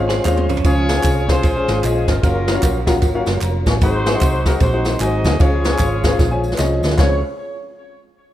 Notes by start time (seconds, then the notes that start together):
Already playing: G#1 G#3 C4 C#4 F4 G#4 C5
0.00 F5
0.09 C4 G#4, snare, ride bell, tambourine
0.25 D#2 G#3 C#4 F4 G#4 C5 F5, snare, clap, tambourine
0.37 high tom
0.49 C#2 F3 C#4, mid tom, tambourine
0.57 floor tom
0.64 C#2 C#3 G#3 C#4 F4 G#4 B4 C5 C#5 F5, kick, ride bell, tambourine
0.69 G#4
0.89 snare, ride bell, tambourine
0.96 C#4 F4 G#4 C5 G#5
1.03 C2, kick, clap, ride bell, tambourine
1.28 C#4 F4 G#4 C5 F5, kick, snare, ride bell, tambourine
1.43 A#1, kick, ride bell, tambourine
1.56 C#4 F4 G#4 C5 G#5
1.68 G#1, snare, ride bell, tambourine
1.83 A#1 C#4 F4 G#4 C5 D#5, clap, ride bell, tambourine
2.08 G1 C#4 F4 A#4, kick, snare, ride bell, tambourine
2.23 F#1 F#3 A#3 C#4 F4 F#4 A#4 F5, kick, ride bell, tambourine
2.48 snare, ride bell, tambourine
2.54 C#4 F4 F#4 A#4 F5
2.63 A#1, kick, clap, ride bell, tambourine
2.86 C#4 F4 F#4 A#4 F5, kick, snare, ride bell, tambourine
3.02 G#1, kick, ride bell, tambourine
3.15 C#4 F4 F#4 A#4 F5
3.26 F#1, snare, ride bell, tambourine
3.41 F1 F5 A#5, clap, ride bell, tambourine
3.66 A1 G#5 C#6, kick, snare, ride bell, tambourine
3.81 G#1 G#2 F#3 G#3 C4 D#4 F#4 G#4 C5 F#5, kick, ride bell, tambourine
3.87 G#4
4.06 snare, ride bell, tambourine
4.15 D#4 F#4 G#4 C5 F#5
4.21 C2, kick, clap, ride bell, tambourine
4.45 D#4 F#4 G#4 A#4 C5 F#5, kick, snare, ride bell, tambourine
4.60 A#1 D#4 F#4 C5, kick, ride bell, tambourine
4.73 D#4 F#4 G#4 C5 F#5
4.85 snare, ride bell, tambourine
5.00 G#1 D#4 F#4 G#4 A#4 C5 D#5 G#5, clap, ride bell, tambourine
5.06 C5
5.24 D2, kick, snare, ride bell, tambourine
5.39 C#2 C#3 D#3 G#3 C#4 F4 G#4 C5 C#5 F5, kick, ride bell, tambourine
5.44 F3
5.65 snare, ride bell, tambourine
5.72 C#4 F4 G#4 C5 G#5
5.79 G#1, kick, clap, ride bell, tambourine
6.03 C#4 F4 G#4 C5 F5, kick, snare, ride bell, tambourine
6.19 A#1, kick, snare, tambourine
6.31 C#4 F4 G#4 C5 G#5
6.44 tambourine
6.52 snare
6.58 C2 C#4 F4 G#4 C5 D#5, snare, clap, tambourine
6.83 D2, snare, tambourine
6.91 snare
6.97 C#2 F3 C4 C#4 G#4 C5 C#5 F5, kick, snare, clap, open hi-hat